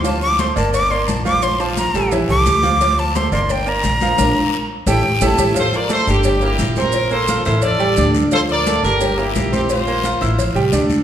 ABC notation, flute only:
X:1
M:4/4
L:1/8
Q:1/4=174
K:Dm
V:1 name="Flute"
a d' c' a d' c' a d' | c' a b2 z d'3- | d' a c' c' g b3- | b3 z g2 a2 |
z8 | z8 | z8 | z8 |]